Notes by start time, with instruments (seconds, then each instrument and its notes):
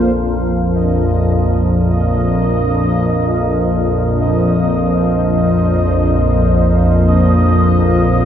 Already playing: synth drone A#1 F2, analog synth pad A#3 F4 C5
0.17 synth drone A#1 F2, synth texture D#5